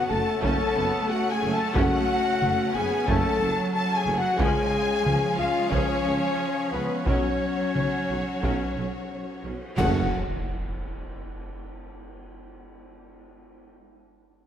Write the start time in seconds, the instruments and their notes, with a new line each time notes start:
Already playing: string section A3 C#4 C#5 F#5, flute F#5
0.08 tuba F#1, double bass section F#1, viola section A3 C#4, cello section A3, french horn section A4, flute A5, violin section A5
0.41 tuba F#1, double bass section F#1, trombone section C#3 A3, viola section A3 C#4, cello section C#4, french horn section A4, flute A5, violin section A5, taiko
0.75 tuba F#1, double bass section F#1, viola section A3 C#4, cello section B3
1.08 cello section A3, french horn section F#4, flute F#5, violin section F#5
1.31 french horn section G#4, flute G#5, violin section G#5
1.42 tuba F#1, double bass section F#1, viola section A3 C#4
1.52 french horn section A4, flute A5, violin section A5
1.75 tuba F#1, double bass section F#1, trombone section C#3 A3, viola section A3 C#4, french horn section F#4, flute F#5, violin section F#5, taiko
2.42 tuba F#1, double bass section F#1, viola section F#3 A3, cello section A3, taiko mid
2.74 double bass section F#1, tuba F#1, viola section A3 C#4, cello section B3, french horn section G#4, flute G#5, violin section G#5
3.06 tuba F#1, double bass section F#1, trombone section C#3 A3, viola section A3 C#4, cello section A3, french horn section A4, flute A5, violin section A5, taiko
3.40 double bass section F#1, tuba F#1, cello section F#3, viola section A3 C#4
3.73 french horn section A4, violin section A5, flute A5
3.96 french horn section G#4, flute G#5, violin section G#5
4.06 double bass section F#1, tuba F#1, viola section A3 C#4
4.17 french horn section F#4, violin section F#5, flute F#5
4.37 tuba C#2, double bass section C#2, trombone section C#3 F3, timpani C#3, viola section F3 C#4, string section C#4 G#4 C#5 F5, french horn section G#4, flute G#5, violin section G#5, taiko
4.41 cello section G#3
5.06 tuba C#2, double bass section C#2, viola section C#3 G#3, cello section F3, taiko mid
5.36 tuba C#2, double bass section C#2, viola section F3 C#4, cello section G#3, french horn section F4, flute F5, violin section F5
5.70 tuba C#2, double bass section C#2, trombone section C#3 F3, viola section F3 C#4, cello section F3, french horn section C#4, flute C#5, violin section C#5, taiko
6.05 tuba C#2, double bass section C#2, viola section F3 C#4
6.71 tuba C#2, double bass section C#2, viola section F3 C#4, french horn section B3, flute B4, violin section B4
7.05 tuba B1, double bass section B1, trombone section B2 F#3, viola section F#3 C#4, cello section F#3, french horn section C#4, string section F#4 F#5, flute C#5, violin section C#5, taiko
7.75 tuba B1, double bass section B1, viola section C#3 B3, taiko mid
8.09 tuba B1, double bass section B1, viola section F#3 C#4
8.42 tuba B1, double bass section B1, trombone section B2 F#3, viola section F#3 C#4, taiko
8.77 tuba B1, double bass section B1, viola section F#3 C#4
9.44 tuba B1, double bass section B1, viola section F#3 C#4
9.76 tuba F#1, double bass section F#1, timpani F#2, cello section F#2, trombone section C#3 A3, viola section A3 F#4, string section C#4 A4 C#5 F#5, french horn section F#4, flute F#5, violin section F#5, concert bass drum, taiko low, crash, impact